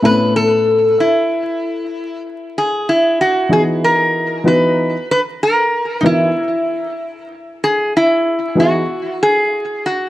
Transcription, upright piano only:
X:1
M:4/4
L:1/8
Q:"Swing 16ths" 1/4=95
K:E
V:1 name="Upright piano"
[A,,B,=C^CEA]3 z4 z | z3 [E,B,DFG]3 [E,B,DFB] z | z3 [E,B,DF_B] z4 | z3 [E,B,DFG] z4 |]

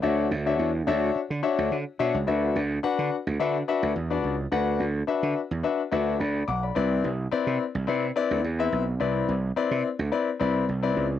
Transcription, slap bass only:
X:1
M:4/4
L:1/16
Q:1/4=107
K:Dmix
V:1 name="Slap bass" clef=bass
D,,2 D,,2 E,,2 D,,2 z D, z D,, D, z B,, ^C,, | D,,2 D,,2 z D, z D,, D,2 z D,, E,,2 ^C,,2 | D,,2 D,,2 z D, z E,, z2 D,,2 D,,2 B,,,2 | C,,2 C,,2 z C, z C,, C,2 z D,, E,,2 B,,,2 |
C,,2 C,,2 z C, z D,, z2 C,,2 C,,2 ^C,,2 |]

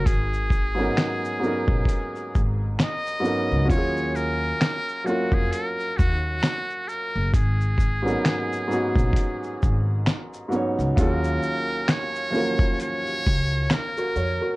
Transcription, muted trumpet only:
X:1
M:4/4
L:1/16
Q:"Swing 16ths" 1/4=66
K:Ebm
V:1 name="Muted trumpet"
A8- A3 z e4 | d2 B4 G A B2 G4 B2 | A12 z4 | B4 d4 d4 B4 |]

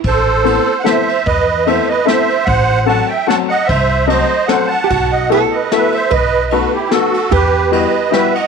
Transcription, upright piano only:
X:1
M:3/4
L:1/8
Q:"Swing" 1/4=149
K:Ador
V:1 name="Upright piano"
z2 [A,B,CEA] z [A,B,CEA] z | z2 [A,B,CEA] z [A,B,CEA] z | z2 [F,A,CFA] z [F,A,CFA] z | z2 [F,A,CFA] z [F,A,CFA] z |
z2 [A,B,EFA] z [A,B,EFA] z | z2 [A,B,^DFA] z [A,B,DFA] z | z2 [G,B,EFG] z [G,B,EFG] z |]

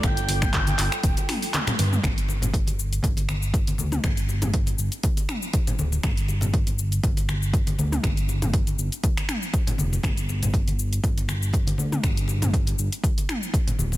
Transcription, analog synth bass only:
X:1
M:4/4
L:1/8
Q:"Swing 16ths" 1/4=120
K:Cmix
V:1 name="Analog synth bass" clef=bass
G,,,3 G,,, D,,, z2 G,, | G,,,4 G,,,3 D,, | G,,,3 G,,, z3 D,,, | G,,,4 G,,,3 D,, |
G,,,3 G,,, z3 F,,, | G,,,4 G,,,3 D,, | G,,,3 G,,, z3 D,,, |]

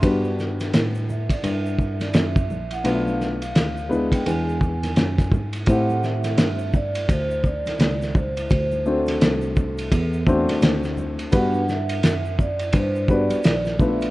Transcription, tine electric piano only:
X:1
M:4/4
L:1/16
Q:"Swing 16ths" 1/4=85
K:Ador
V:1 name="Tine electric piano" clef=bass
G,,4 A,,3 G,, G,,4 F,,2 _B,,,2 | B,,,4 D,,3 z E,,4 F,,2 ^G,,2 | A,,4 G,,4 D,,3 ^C,, C,,4 | D,,4 C,,4 E,,3 D,, D,,3 D,, |
G,,4 F,,4 G,,3 _B,,, B,,,4 |]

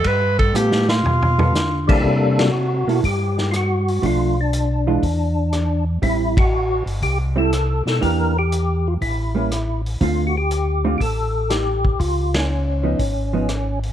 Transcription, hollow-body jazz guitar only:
X:1
M:4/4
L:1/8
Q:"Swing" 1/4=120
K:Aphr
V:1 name="Hollow-body jazz guitar"
z2 [G,=B,FA] z2 [G,B,FA] z2 | z3 [B,EA] z4 | [F,A,D] z2 [E,_A,DF] z4 | [G,CE] z4 [G,CE] z2 |
[E,B,DG] z4 [G,B,^C] z2 | [D,A,CF] z2 [D,A,CF] z4 | z3 [F,_C_E] z [F,CE] z2 |]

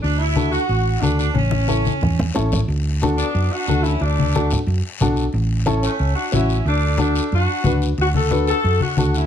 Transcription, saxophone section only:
X:1
M:4/4
L:1/8
Q:1/4=181
K:D
V:1 name="Saxophone section"
D E2 F3 D D | C6 z2 | z3 [B,D]2 [DF]2 [CE] | [A,D]3 z4 z |
z3 [A,C]2 [DF] [CE]2 | [A,D]2 [A,D]2 [DF]3 z | [DF] [FA]2 [FA]2 [DF] [DF] [CE] |]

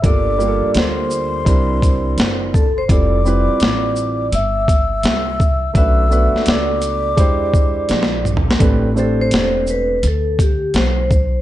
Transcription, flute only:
X:1
M:4/4
L:1/16
Q:"Swing 16ths" 1/4=84
K:Am
V:1 name="Flute"
d'4 c'8- c'2 a c' | d'8 e'8 | e'4 d'8- d'2 z2 | z16 |]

